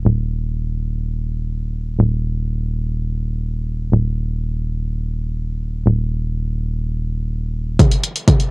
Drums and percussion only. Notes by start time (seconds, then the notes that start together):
7.79 kick, closed hi-hat, mid tom
7.91 closed hi-hat
8.04 closed hi-hat
8.16 closed hi-hat
8.28 kick, closed hi-hat, mid tom
8.40 closed hi-hat